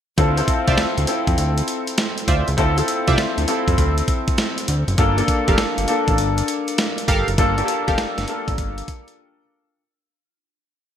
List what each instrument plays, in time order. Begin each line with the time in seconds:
0.18 analog synth bass D2, grand piano C4 E4 F4 A4, kick, closed hi-hat
0.37 grand piano C4 E4 F4 A4, closed hi-hat
0.48 kick, closed hi-hat
0.67 analog synth bass C2, analog polysynth F4 C5 D5 E5, kick, closed hi-hat
0.78 analog synth bass D2, snare, closed hi-hat
0.98 analog synth bass D2, closed hi-hat
1.07 grand piano C4 E4 F4 A4, closed hi-hat
1.27 analog synth bass F2, kick, closed hi-hat
1.38 analog synth bass D2, closed hi-hat
1.58 closed hi-hat
1.68 closed hi-hat
1.87 closed hi-hat
1.98 snare, closed hi-hat
2.18 closed hi-hat
2.28 analog synth bass D2, analog polysynth F4 C5 D5 E5, kick, closed hi-hat
2.48 analog synth bass C#2, closed hi-hat
2.57 analog synth bass D2, grand piano C4 E4 F4 A4, kick, closed hi-hat
2.77 grand piano C4 E4 F4 A4, closed hi-hat
2.88 closed hi-hat
3.07 analog synth bass C2, analog polysynth F4 C5 D5 E5, kick, closed hi-hat
3.18 analog synth bass D2, snare, closed hi-hat
3.38 analog synth bass D2, closed hi-hat
3.47 grand piano C4 E4 F4 A4, closed hi-hat
3.68 analog synth bass F2, kick, closed hi-hat
3.78 analog synth bass D2, kick, closed hi-hat
3.98 closed hi-hat
4.08 kick, closed hi-hat
4.28 kick, closed hi-hat
4.38 snare, closed hi-hat
4.58 closed hi-hat
4.68 analog synth bass D2, closed hi-hat
4.88 analog synth bass F#1, closed hi-hat
4.98 analog synth bass G1, grand piano A#3 D4 F4 A4, kick, closed hi-hat
5.17 grand piano A#3 D4 F4 A4, closed hi-hat
5.28 kick, closed hi-hat
5.48 analog synth bass F1, analog polysynth G4 A4 A#4 F5, kick, closed hi-hat
5.58 analog synth bass G1, snare, closed hi-hat
5.78 analog synth bass G1, closed hi-hat
5.88 grand piano A#3 D4 F4 A4, closed hi-hat
6.08 analog synth bass A1, kick, closed hi-hat
6.18 analog synth bass G1, closed hi-hat
6.38 closed hi-hat
6.48 closed hi-hat
6.68 closed hi-hat
6.78 snare, closed hi-hat
6.98 closed hi-hat
7.08 analog synth bass G1, analog polysynth G4 A4 A#4 F5, kick, closed hi-hat
7.28 analog synth bass F#1, closed hi-hat
7.38 analog synth bass G1, grand piano A#3 D4 F4 A4, kick, closed hi-hat
7.58 grand piano A#3 D4 F4 G4, closed hi-hat
7.65 grand piano A4, closed hi-hat
7.88 analog synth bass F1, analog polysynth G4 A4 A#4 F5, kick, closed hi-hat
7.98 analog synth bass G1, snare, closed hi-hat
8.18 analog synth bass G1, snare, closed hi-hat
8.28 grand piano A#3 D4 F4 A4, closed hi-hat
8.48 analog synth bass A1, kick, closed hi-hat
8.58 analog synth bass G1, kick, closed hi-hat
8.78 closed hi-hat
8.88 kick, closed hi-hat
9.08 closed hi-hat